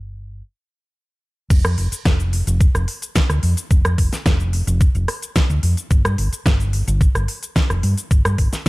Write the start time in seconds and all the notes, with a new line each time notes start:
Already playing: G1
1.50 F1, kick, closed hi-hat, crash, shaker
1.65 F2, cross-stick, closed hi-hat, shaker
1.78 F1, open hi-hat
1.92 muted fingered electric bass stroke, closed hi-hat, shaker
2.05 F1, kick, snare, closed hi-hat, shaker
2.20 closed hi-hat, shaker
2.33 open hi-hat
2.47 F1, closed hi-hat, shaker
2.61 kick, closed hi-hat, shaker
2.75 F1, cross-stick, closed hi-hat, shaker
2.88 open hi-hat
3.02 closed hi-hat, shaker
3.15 kick, snare, closed hi-hat, shaker
3.30 D2, cross-stick, closed hi-hat, shaker
3.43 F2, open hi-hat
3.57 closed hi-hat, shaker
3.71 F1, kick, closed hi-hat, shaker
3.85 F2, cross-stick, closed hi-hat, shaker
3.98 F1, kick, open hi-hat
4.13 muted fingered electric bass stroke, snare, closed hi-hat, shaker
4.26 F1, kick, snare, closed hi-hat, shaker
4.40 closed hi-hat, shaker
4.53 open hi-hat
4.67 F1, closed hi-hat, shaker
4.81 kick, closed hi-hat, shaker
4.95 F1, closed hi-hat, shaker
5.08 cross-stick, open hi-hat
5.22 closed hi-hat, shaker
5.36 kick, snare, closed hi-hat, shaker
5.50 D2, closed hi-hat, shaker
5.63 F2, open hi-hat
5.77 closed hi-hat, shaker
5.91 G1, kick, closed hi-hat, shaker
6.05 G2, cross-stick, closed hi-hat, shaker
6.18 G1, open hi-hat
6.33 muted fingered electric bass stroke, closed hi-hat, shaker
6.46 G1, kick, snare, closed hi-hat, shaker
6.60 closed hi-hat, shaker
6.73 open hi-hat
6.88 G1, closed hi-hat, shaker
7.01 kick, closed hi-hat, shaker
7.15 G1, cross-stick, closed hi-hat, shaker
7.28 open hi-hat
7.43 closed hi-hat, shaker
7.56 kick, snare, closed hi-hat, shaker
7.70 F1, cross-stick, closed hi-hat, shaker
7.83 G2, open hi-hat
7.98 closed hi-hat, shaker
8.11 G1, kick, closed hi-hat, shaker
8.25 G2, cross-stick, closed hi-hat, shaker
8.38 G1, kick, open hi-hat
8.53 muted fingered electric bass stroke, snare, closed hi-hat, shaker